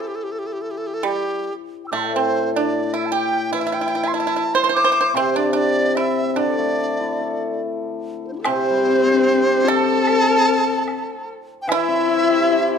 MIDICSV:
0, 0, Header, 1, 6, 480
1, 0, Start_track
1, 0, Tempo, 798935
1, 1166, Time_signature, 4, 2, 24, 8
1, 2608, Tempo, 813008
1, 4048, Tempo, 832178
1, 5488, Tempo, 806452
1, 7575, End_track
2, 0, Start_track
2, 0, Title_t, "Dizi"
2, 0, Program_c, 0, 73
2, 3, Note_on_c, 0, 69, 60
2, 44, Note_on_c, 0, 67, 57
2, 53, Note_off_c, 0, 69, 0
2, 92, Note_on_c, 0, 69, 59
2, 101, Note_off_c, 0, 67, 0
2, 140, Note_on_c, 0, 67, 53
2, 149, Note_off_c, 0, 69, 0
2, 190, Note_on_c, 0, 69, 61
2, 199, Note_off_c, 0, 67, 0
2, 233, Note_on_c, 0, 67, 55
2, 242, Note_off_c, 0, 69, 0
2, 279, Note_on_c, 0, 69, 60
2, 288, Note_off_c, 0, 67, 0
2, 316, Note_on_c, 0, 67, 56
2, 325, Note_off_c, 0, 69, 0
2, 370, Note_on_c, 0, 69, 53
2, 379, Note_off_c, 0, 67, 0
2, 425, Note_on_c, 0, 67, 55
2, 434, Note_off_c, 0, 69, 0
2, 466, Note_on_c, 0, 69, 57
2, 475, Note_off_c, 0, 67, 0
2, 521, Note_on_c, 0, 67, 54
2, 530, Note_off_c, 0, 69, 0
2, 564, Note_on_c, 0, 69, 59
2, 573, Note_off_c, 0, 67, 0
2, 625, Note_on_c, 0, 67, 69
2, 634, Note_off_c, 0, 69, 0
2, 922, Note_off_c, 0, 67, 0
2, 1108, Note_on_c, 0, 79, 28
2, 1120, Note_off_c, 0, 79, 0
2, 1122, Note_on_c, 0, 88, 30
2, 1146, Note_off_c, 0, 88, 0
2, 1150, Note_on_c, 0, 86, 33
2, 1162, Note_off_c, 0, 86, 0
2, 1177, Note_on_c, 0, 84, 32
2, 1201, Note_off_c, 0, 84, 0
2, 1204, Note_on_c, 0, 81, 35
2, 1216, Note_off_c, 0, 81, 0
2, 1217, Note_on_c, 0, 79, 37
2, 1239, Note_off_c, 0, 79, 0
2, 1242, Note_on_c, 0, 76, 39
2, 1255, Note_off_c, 0, 76, 0
2, 1259, Note_on_c, 0, 74, 40
2, 1272, Note_on_c, 0, 72, 69
2, 1281, Note_off_c, 0, 74, 0
2, 1519, Note_off_c, 0, 72, 0
2, 1529, Note_on_c, 0, 74, 69
2, 1763, Note_on_c, 0, 76, 72
2, 1772, Note_off_c, 0, 74, 0
2, 1838, Note_on_c, 0, 81, 56
2, 1847, Note_off_c, 0, 76, 0
2, 1878, Note_on_c, 0, 79, 78
2, 1887, Note_off_c, 0, 81, 0
2, 2121, Note_off_c, 0, 79, 0
2, 2130, Note_on_c, 0, 76, 77
2, 2246, Note_on_c, 0, 79, 72
2, 2255, Note_off_c, 0, 76, 0
2, 2448, Note_on_c, 0, 84, 56
2, 2457, Note_off_c, 0, 79, 0
2, 2490, Note_on_c, 0, 81, 80
2, 2499, Note_off_c, 0, 84, 0
2, 2726, Note_on_c, 0, 84, 76
2, 2735, Note_off_c, 0, 81, 0
2, 2838, Note_off_c, 0, 84, 0
2, 2842, Note_on_c, 0, 86, 85
2, 3089, Note_on_c, 0, 72, 80
2, 3098, Note_off_c, 0, 86, 0
2, 3211, Note_on_c, 0, 74, 74
2, 3220, Note_off_c, 0, 72, 0
2, 3317, Note_off_c, 0, 74, 0
2, 3320, Note_on_c, 0, 74, 81
2, 3561, Note_on_c, 0, 76, 84
2, 3570, Note_off_c, 0, 74, 0
2, 3764, Note_off_c, 0, 76, 0
2, 3764, Note_on_c, 0, 76, 51
2, 3819, Note_on_c, 0, 74, 78
2, 3828, Note_off_c, 0, 76, 0
2, 4533, Note_off_c, 0, 74, 0
2, 4894, Note_on_c, 0, 69, 29
2, 4909, Note_off_c, 0, 69, 0
2, 4912, Note_on_c, 0, 72, 33
2, 4938, Note_off_c, 0, 72, 0
2, 4941, Note_on_c, 0, 62, 35
2, 4953, Note_off_c, 0, 62, 0
2, 4953, Note_on_c, 0, 64, 38
2, 4969, Note_off_c, 0, 64, 0
2, 4973, Note_on_c, 0, 67, 41
2, 4984, Note_off_c, 0, 67, 0
2, 4988, Note_on_c, 0, 69, 41
2, 5022, Note_off_c, 0, 69, 0
2, 5025, Note_on_c, 0, 72, 78
2, 5734, Note_on_c, 0, 81, 104
2, 5743, Note_off_c, 0, 72, 0
2, 6693, Note_off_c, 0, 81, 0
2, 6881, Note_on_c, 0, 79, 73
2, 6920, Note_on_c, 0, 76, 102
2, 6929, Note_off_c, 0, 79, 0
2, 7575, Note_off_c, 0, 76, 0
2, 7575, End_track
3, 0, Start_track
3, 0, Title_t, "Horsehead fiddle"
3, 0, Program_c, 1, 110
3, 5016, Note_on_c, 1, 60, 73
3, 5715, Note_on_c, 1, 69, 90
3, 5724, Note_off_c, 1, 60, 0
3, 6683, Note_off_c, 1, 69, 0
3, 6926, Note_on_c, 1, 64, 92
3, 7575, Note_off_c, 1, 64, 0
3, 7575, End_track
4, 0, Start_track
4, 0, Title_t, "Pipa"
4, 0, Program_c, 2, 105
4, 620, Note_on_c, 2, 55, 68
4, 899, Note_off_c, 2, 55, 0
4, 1158, Note_on_c, 2, 57, 65
4, 1273, Note_off_c, 2, 57, 0
4, 1297, Note_on_c, 2, 60, 60
4, 1516, Note_off_c, 2, 60, 0
4, 1540, Note_on_c, 2, 62, 60
4, 1757, Note_off_c, 2, 62, 0
4, 1764, Note_on_c, 2, 64, 64
4, 1871, Note_off_c, 2, 64, 0
4, 1873, Note_on_c, 2, 67, 69
4, 2102, Note_off_c, 2, 67, 0
4, 2119, Note_on_c, 2, 64, 68
4, 2163, Note_off_c, 2, 64, 0
4, 2169, Note_on_c, 2, 64, 47
4, 2196, Note_off_c, 2, 64, 0
4, 2203, Note_on_c, 2, 64, 52
4, 2230, Note_off_c, 2, 64, 0
4, 2237, Note_on_c, 2, 64, 44
4, 2284, Note_off_c, 2, 64, 0
4, 2291, Note_on_c, 2, 64, 49
4, 2322, Note_off_c, 2, 64, 0
4, 2329, Note_on_c, 2, 64, 42
4, 2366, Note_off_c, 2, 64, 0
4, 2373, Note_on_c, 2, 64, 49
4, 2417, Note_off_c, 2, 64, 0
4, 2424, Note_on_c, 2, 64, 42
4, 2471, Note_off_c, 2, 64, 0
4, 2486, Note_on_c, 2, 64, 50
4, 2516, Note_off_c, 2, 64, 0
4, 2523, Note_on_c, 2, 64, 45
4, 2558, Note_off_c, 2, 64, 0
4, 2565, Note_on_c, 2, 64, 52
4, 2609, Note_off_c, 2, 64, 0
4, 2621, Note_on_c, 2, 64, 46
4, 2659, Note_off_c, 2, 64, 0
4, 2730, Note_on_c, 2, 72, 78
4, 2770, Note_off_c, 2, 72, 0
4, 2784, Note_on_c, 2, 72, 55
4, 2809, Note_off_c, 2, 72, 0
4, 2816, Note_on_c, 2, 72, 62
4, 2852, Note_off_c, 2, 72, 0
4, 2859, Note_on_c, 2, 72, 55
4, 2898, Note_off_c, 2, 72, 0
4, 2905, Note_on_c, 2, 72, 68
4, 2943, Note_off_c, 2, 72, 0
4, 2950, Note_on_c, 2, 72, 56
4, 2991, Note_off_c, 2, 72, 0
4, 3001, Note_on_c, 2, 72, 58
4, 3039, Note_off_c, 2, 72, 0
4, 3096, Note_on_c, 2, 60, 74
4, 3205, Note_off_c, 2, 60, 0
4, 3209, Note_on_c, 2, 62, 63
4, 3304, Note_off_c, 2, 62, 0
4, 3311, Note_on_c, 2, 62, 61
4, 3542, Note_off_c, 2, 62, 0
4, 3569, Note_on_c, 2, 64, 59
4, 3791, Note_off_c, 2, 64, 0
4, 3801, Note_on_c, 2, 62, 59
4, 4501, Note_off_c, 2, 62, 0
4, 5013, Note_on_c, 2, 60, 69
4, 5706, Note_off_c, 2, 60, 0
4, 5730, Note_on_c, 2, 69, 83
4, 6667, Note_off_c, 2, 69, 0
4, 6941, Note_on_c, 2, 64, 86
4, 7575, Note_off_c, 2, 64, 0
4, 7575, End_track
5, 0, Start_track
5, 0, Title_t, "Hammered dulcimer"
5, 0, Program_c, 3, 15
5, 0, Note_on_c, 3, 52, 57
5, 669, Note_off_c, 3, 52, 0
5, 1152, Note_on_c, 3, 45, 57
5, 2110, Note_on_c, 3, 52, 51
5, 2600, Note_off_c, 3, 45, 0
5, 3078, Note_on_c, 3, 48, 57
5, 3562, Note_off_c, 3, 52, 0
5, 3798, Note_on_c, 3, 50, 52
5, 3802, Note_off_c, 3, 48, 0
5, 3929, Note_on_c, 3, 57, 40
5, 4050, Note_on_c, 3, 62, 37
5, 4172, Note_on_c, 3, 64, 38
5, 4296, Note_on_c, 3, 69, 39
5, 4892, Note_off_c, 3, 57, 0
5, 5013, Note_off_c, 3, 62, 0
5, 5021, Note_on_c, 3, 48, 59
5, 5134, Note_off_c, 3, 64, 0
5, 5154, Note_on_c, 3, 55, 46
5, 5245, Note_off_c, 3, 50, 0
5, 5255, Note_off_c, 3, 69, 0
5, 5266, Note_on_c, 3, 60, 42
5, 5395, Note_on_c, 3, 62, 41
5, 5510, Note_on_c, 3, 67, 43
5, 6101, Note_off_c, 3, 55, 0
5, 6218, Note_off_c, 3, 60, 0
5, 6344, Note_off_c, 3, 62, 0
5, 6455, Note_off_c, 3, 48, 0
5, 6462, Note_off_c, 3, 67, 0
5, 6915, Note_on_c, 3, 52, 59
5, 7039, Note_on_c, 3, 60, 44
5, 7157, Note_on_c, 3, 64, 42
5, 7281, Note_on_c, 3, 67, 44
5, 7414, Note_on_c, 3, 72, 45
5, 7575, Note_off_c, 3, 52, 0
5, 7575, Note_off_c, 3, 60, 0
5, 7575, Note_off_c, 3, 64, 0
5, 7575, Note_off_c, 3, 67, 0
5, 7575, Note_off_c, 3, 72, 0
5, 7575, End_track
6, 0, Start_track
6, 0, Title_t, "Drums"
6, 5008, Note_on_c, 9, 76, 72
6, 5066, Note_off_c, 9, 76, 0
6, 5962, Note_on_c, 9, 76, 51
6, 6022, Note_off_c, 9, 76, 0
6, 6440, Note_on_c, 9, 76, 45
6, 6500, Note_off_c, 9, 76, 0
6, 6924, Note_on_c, 9, 76, 67
6, 6984, Note_off_c, 9, 76, 0
6, 7575, End_track
0, 0, End_of_file